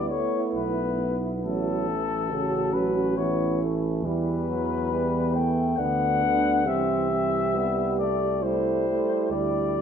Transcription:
Already playing: tuba D2, trombone G3, euphonium B3, french horn section E4
0.09 trombone A3, cornet C#5
0.55 tuba B1, cornet B4
1.44 tuba A1, trombone F#3, cornet A4
1.87 trombone E3
2.29 trombone C#3, euphonium C#4, french horn section F#4
2.73 trombone F#3, cornet B4
3.17 trombone E3, euphonium B3, french horn section E4, cornet C#5
3.63 euphonium A3
4.03 tuba E2, euphonium G3, french horn section E4, cornet B4
4.49 euphonium F#3
4.92 euphonium G3, french horn section B3
5.34 euphonium A3, cornet G5
5.78 tuba D2, trombone D3, euphonium B3, french horn section D4, cornet F#5
6.24 trombone D3
6.65 tuba C2, trombone E3, euphonium C4, french horn section G4, cornet E5
7.12 euphonium C4
7.56 trombone G3, euphonium B3
7.99 euphonium A3, cornet D5
8.42 euphonium G3, trombone A3, french horn section E4, cornet C5
8.88 trombone A3
9.31 tuba D2, trombone G3, cornet D5
9.78 trombone F#3

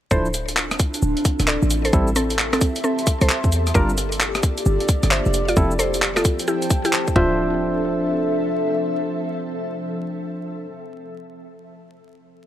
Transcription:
0.11 808-style bass D1, tine electric piano F3 D4 E4 C5, ambient pad C4 D4 E4 F4 A4, synth pluck A4 C5, kick, cabasa
0.26 cabasa
0.34 closed hi-hat, cabasa
0.49 closed hi-hat, cabasa
0.57 clap, cabasa
0.71 cross-stick, closed hi-hat, cabasa
0.79 kick, closed hi-hat, cabasa
0.84 ambient pad A4
0.94 closed hi-hat, cabasa
1.02 808-style bass D1, cabasa
1.17 closed hi-hat
1.25 kick, closed hi-hat, cabasa
1.40 808-style bass D1, cross-stick, closed hi-hat, cabasa
1.47 synth pluck A4 D5, clap, cabasa
1.62 808-style bass A1, cabasa
1.70 ambient pad G4, closed hi-hat, cabasa
1.85 synth pluck A4 C5, closed hi-hat, cabasa
1.93 808-style bass A1, tine electric piano G3 C4 E4 A4, ambient pad E5, kick, cabasa
2.08 cabasa
2.16 synth pluck C4 A4, closed hi-hat, cabasa
2.30 closed hi-hat, cabasa
2.39 clap, cabasa
2.53 synth pluck C4 A4, cross-stick, closed hi-hat, cabasa
2.61 ambient pad A5 C6, kick, closed hi-hat, cabasa
2.76 closed hi-hat, cabasa
2.84 synth pluck C4 A4, cabasa
2.99 closed hi-hat, cabasa
3.07 kick, closed hi-hat, cabasa
3.21 808-style bass C2, synth pluck A4 C5, closed hi-hat, cabasa
3.29 clap, cabasa
3.44 808-style bass E2, kick, cabasa
3.52 closed hi-hat, cabasa
3.67 cross-stick, closed hi-hat, cabasa
3.74 808-style bass G1, tine electric piano G3 D4 F4 A#4, ambient pad A#3 D4 F4 G4, synth pluck A#4 D5, kick, cabasa
3.90 cabasa
3.98 closed hi-hat, cabasa
4.12 ambient pad D5, closed hi-hat, cabasa
4.20 clap, cabasa
4.35 cross-stick, closed hi-hat, cabasa
4.43 kick, closed hi-hat, cabasa
4.58 closed hi-hat, cabasa
4.66 808-style bass G1, cabasa
4.80 closed hi-hat
4.89 kick, closed hi-hat, cabasa
5.03 808-style bass G1, cross-stick, closed hi-hat, cabasa
5.11 synth pluck C5 E5, clap, cabasa
5.26 808-style bass F1, cabasa
5.34 ambient pad F3 C4 E4 G4, closed hi-hat, cabasa
5.49 synth pluck F4 D5, closed hi-hat, cabasa
5.57 808-style bass F1, tine electric piano F3 C4 E4 A4, kick, cabasa
5.71 cabasa
5.79 synth pluck A4 C5, closed hi-hat, cabasa
5.93 ambient pad C5, closed hi-hat, cabasa
6.02 clap, cabasa
6.16 synth pluck F4 A4, cross-stick, closed hi-hat, cabasa
6.25 ambient pad G5 A5, kick, closed hi-hat, cabasa
6.39 closed hi-hat, cabasa
6.48 synth pluck E4 G4, cabasa
6.62 closed hi-hat, cabasa
6.70 kick, closed hi-hat, cabasa
6.85 synth pluck E4 G4, closed hi-hat, cabasa
6.93 clap, cabasa
7.08 kick, cabasa
7.16 808-style bass D1, tine electric piano F3 D4 C5 E5, ambient pad F3 C4 D4 A4 E5, synth pluck F4, kick
7.25 ambient pad A4
7.55 ambient pad E5

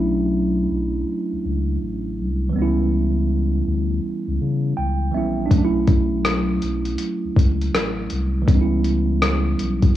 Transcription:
Already playing: sub bass B1, tine electric piano F#3 A3 C#4 D4 E4
0.70 sub bass B1
1.32 sub bass C#2
1.45 sub bass C#2
1.82 sub bass A1
2.19 sub bass C2
2.49 tine electric piano E3 G3
2.55 sub bass C#2, tine electric piano B3 C#4
2.62 tine electric piano E4
3.67 sub bass D2
4.27 sub bass C#2
4.41 sub bass C#3
4.77 sub bass C#2, tine electric piano G5
5.11 sub bass A#1, tine electric piano E3 G3 B3 E5
5.16 tine electric piano C#4 E4
5.46 tine electric piano F#3 D4
5.51 sub bass B1, tine electric piano A3 C#4, kick, closed hi-hat
5.58 tine electric piano D4
5.65 tine electric piano E4
5.87 kick, closed hi-hat
6.25 cross-stick, closed hi-hat
6.62 sub bass B1, closed hi-hat
6.85 closed hi-hat
6.98 closed hi-hat
7.24 sub bass C#2
7.36 sub bass C#2, kick, closed hi-hat
7.61 closed hi-hat
7.75 sub bass A1, cross-stick, closed hi-hat
8.10 sub bass C2, closed hi-hat
8.42 tine electric piano E3 G3
8.48 sub bass C#2, tine electric piano B3 C#4, kick, closed hi-hat
8.55 tine electric piano D#4
8.61 tine electric piano E4
8.84 closed hi-hat
9.22 cross-stick, closed hi-hat
9.59 sub bass B1, closed hi-hat
9.82 kick, closed hi-hat

